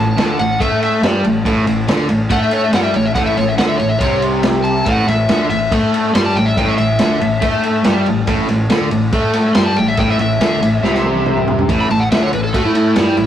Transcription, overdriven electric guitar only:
0.00 0.14 A2 medium
0.18 0.38 D3 loud
0.41 0.57 A2 medium
0.61 1.02 A3 loud
1.04 1.24 G3 medium
1.25 1.42 A2 medium
1.46 1.66 A2 loud
1.67 1.84 A2 medium
1.88 2.09 D3 loud
2.10 2.27 A2 medium
2.31 2.73 A3 loud
2.74 2.94 G3 medium
2.96 3.12 A2 medium
3.16 3.37 A2 loud
3.38 3.55 A2 medium
3.58 3.79 D3 loud
3.80 3.97 A2 medium
4.02 4.87 C3 loud
4.88 5.07 A2 loud
5.08 5.25 A2 medium
5.30 5.50 D3 loud
5.52 5.68 A2 medium
5.73 6.14 A3 loud
6.15 6.35 G3 loud
6.37 6.54 A2 medium
6.58 6.78 A2 loud
6.80 6.96 A2 medium
7.00 7.21 D3 loud
7.21 7.39 A2 medium
7.42 7.85 A3 loud
7.86 8.06 G3 loud
8.08 8.24 A2 medium
8.28 8.49 A2 loud
8.50 8.67 A2 medium
8.70 8.91 D3 loud
8.92 9.09 A2 medium
9.14 9.56 A3 loud
9.56 9.77 G3 loud
9.77 9.94 A2 medium
10.00 10.19 A2 loud
10.20 10.37 A2 medium
10.41 10.62 D3 loud
10.63 10.80 A2 medium
10.84 11.68 C3 loud
11.70 11.90 A2 loud
11.91 12.08 A2 medium
12.12 12.32 D3 loud
12.34 12.50 A2 medium
12.54 12.96 A3 loud
12.97 13.17 G3 loud
13.17 13.27 A2 medium

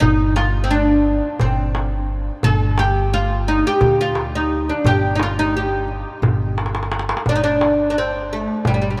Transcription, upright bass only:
0.01 1.19 G1 loud
1.40 2.28 G1 medium
2.44 3.62 G1 loud
3.81 4.70 D2 medium
4.84 6.03 G1 medium
6.22 7.11 G1 medium
7.26 8.45 G1 medium
8.65 9.00 G1 medium

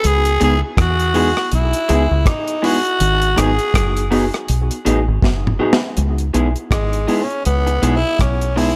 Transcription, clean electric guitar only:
0.40 0.53 G#3 medium
0.40 0.53 B3 medium
0.40 0.54 E4 medium
0.40 0.54 G#4 loud
1.15 1.27 G#3 loud
1.15 1.28 B3 loud
1.15 1.28 E4 loud
1.15 1.28 G#4 loud
1.89 2.01 G#3 medium
1.89 2.02 B3 medium
1.89 2.02 E4 loud
1.89 2.02 G#4 loud
2.62 2.75 G#3 medium
2.62 2.76 B3 medium
2.62 2.76 E4 loud
2.62 2.76 G#4 loud
3.36 3.49 F#3 medium
3.36 3.50 B3 medium
3.36 3.50 D#4 medium
3.36 3.50 G#4 medium
4.11 4.24 F#3 medium
4.11 4.24 B3 loud
4.11 4.24 D#4 medium
4.11 4.24 G#4 loud
4.85 4.98 F#3 medium
4.85 4.98 B3 medium
4.85 4.99 D#4 loud
4.85 4.99 G#4 loud
5.60 5.72 F#3 medium
5.60 5.73 B3 medium
5.60 5.73 D#4 medium
5.60 5.73 G#4 medium
6.34 6.46 G#3 medium
6.34 6.47 B3 medium
6.34 6.47 E4 medium
6.34 6.47 G#4 medium
7.08 7.20 G#3 loud
7.08 7.21 B3 medium
7.08 7.21 E4 medium
7.08 7.21 G#4 medium
7.67 muted clean electric guitar stroke soft
7.82 7.95 G#3 medium
7.82 7.95 B3 medium
7.82 7.95 E4 medium
7.82 7.95 G#4 medium
8.56 8.69 G#3 medium
8.56 8.69 B3 medium
8.56 8.69 E4 medium
8.56 8.70 G#4 medium

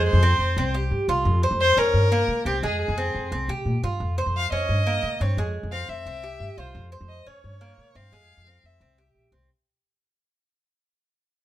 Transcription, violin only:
0.07 0.71 C5 medium
1.61 1.80 C5 loud
1.78 2.46 A#4 loud
2.47 2.63 G4 medium
2.65 2.80 G#4 medium
2.82 3.29 G#4 medium
4.37 4.52 F5 loud
4.53 5.23 D#5 loud
5.22 5.38 C#5 medium
5.72 5.91 F5 loud
5.89 6.61 E5 loud
6.59 6.76 C5 medium
7.09 7.28 D#5 medium
7.27 7.98 C#5 medium
7.96 8.67 F5 loud
8.66 9.16 E5 medium

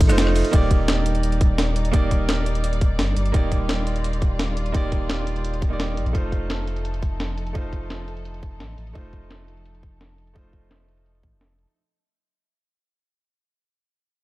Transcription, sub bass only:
0.01 0.11 A1 loud
0.10 0.43 F1 loud
0.53 1.92 D#1 loud
1.94 3.00 D#1 loud
2.99 3.15 G1 medium
3.16 3.32 G1 medium
3.34 4.73 D#1 loud
4.74 5.99 D#1 loud
5.97 6.05 G1 medium
6.06 6.14 A#1 loud
6.15 7.54 F1 loud
7.55 8.62 F1 medium
8.60 8.76 A1 medium
8.78 8.94 A1 medium
8.95 10.34 F1 loud
10.36 11.23 F1 medium
11.23 11.34 A1 loud
11.32 11.66 F1 medium

